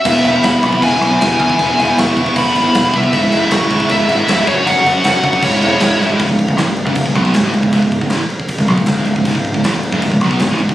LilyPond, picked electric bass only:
\new Staff \with { instrumentName = "Picked electric bass" } { \clef bass \time 4/4 \key cis \minor \tempo 4 = 156 e,,8 e,,8 e,,8 b,,8 e,,8 b,,8 e,,8 e,8 | e,,8 e,,8 e,,8 e,,8 e,,8 gis,,8 e,,8 bis,,8 | cis,,8 cis,,8 cis,,8 gis,,8 cis,,8 gis,,8 cis,,8 fis,,8 | fis,,8 fis,,8 fis,,8 fis,,8 cis,,8 e,,8 cis,,8 gis,,8 |
cis,,16 cis,,8 cis,,16 a,,16 cis,,8 fis,,16 cis,,16 cis,,16 b,,8 cis,,16 a,,16 cis,,16 cis,,16 | cis,,16 cis,,8 cis,,16 a,,16 r4 cis,,16 b,,16 cis,,16 cis,,16 cis,,16 cis,,16 cis,,16 | cis,,16 cis,,8 cis,,16 a,,16 cis,,8 fis,,16 cis,,16 cis,,16 b,,8 cis,,16 a,,16 cis,,16 cis,,16 | }